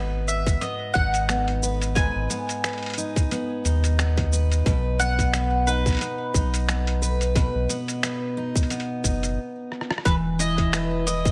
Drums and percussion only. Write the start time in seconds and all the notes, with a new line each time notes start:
0.28 shaker
0.47 kick, closed hi-hat, shaker
0.62 closed hi-hat, shaker
0.95 kick, closed hi-hat
1.14 closed hi-hat, shaker
1.29 finger snap, closed hi-hat, shaker
1.48 closed hi-hat
1.63 shaker
1.82 closed hi-hat, shaker
1.96 kick, closed hi-hat, shaker
2.30 closed hi-hat, shaker
2.49 closed hi-hat, shaker
2.64 finger snap, closed hi-hat, shaker
2.69 closed hi-hat
2.73 closed hi-hat
2.78 closed hi-hat
2.83 closed hi-hat
2.86 closed hi-hat
2.90 closed hi-hat
2.94 closed hi-hat
2.98 shaker
3.16 kick, closed hi-hat, shaker
3.31 closed hi-hat, shaker
3.65 closed hi-hat, shaker
3.84 closed hi-hat, shaker
3.99 finger snap, closed hi-hat, shaker
4.17 kick, closed hi-hat
4.33 shaker
4.51 closed hi-hat, shaker
4.66 kick, closed hi-hat, shaker
5.00 closed hi-hat, shaker
5.19 kick, closed hi-hat, shaker
5.33 finger snap, closed hi-hat, shaker
5.67 shaker
5.86 kick, closed hi-hat, shaker
5.88 closed hi-hat
5.90 closed hi-hat
5.92 closed hi-hat
5.95 closed hi-hat
5.97 closed hi-hat
5.99 closed hi-hat
6.01 closed hi-hat, shaker
6.34 kick, closed hi-hat, shaker
6.54 closed hi-hat, shaker
6.69 finger snap, closed hi-hat, shaker
6.87 closed hi-hat
7.03 shaker
7.21 closed hi-hat, shaker
7.35 kick, closed hi-hat, shaker
7.69 closed hi-hat, shaker
7.88 closed hi-hat, shaker
8.03 finger snap, closed hi-hat, shaker
8.56 kick, closed hi-hat, shaker
8.63 closed hi-hat
8.70 closed hi-hat, shaker
8.80 closed hi-hat
9.04 kick, closed hi-hat, shaker
9.23 closed hi-hat, shaker
9.72 cross-stick
9.81 cross-stick
9.91 cross-stick
9.98 cross-stick
10.05 kick, closed hi-hat, shaker
10.39 closed hi-hat, shaker
10.58 kick, closed hi-hat
10.73 finger snap, closed hi-hat, shaker
11.07 shaker
11.25 kick, closed hi-hat, shaker